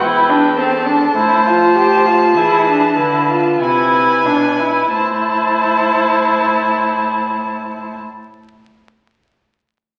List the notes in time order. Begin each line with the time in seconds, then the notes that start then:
0.00 E2 E4 B4 G5
0.29 D4
0.57 C4 A4 A5
0.87 D4
1.15 A2 E4 C5
1.46 F4
1.75 G4
2.06 F4
2.36 E3 E4 G#4
2.68 D4
2.97 D3 E4 B4
3.30 F4
3.60 C3 E4 G#5
4.26 B2 D4
4.59 E4
4.92 A2 E4 C5 A5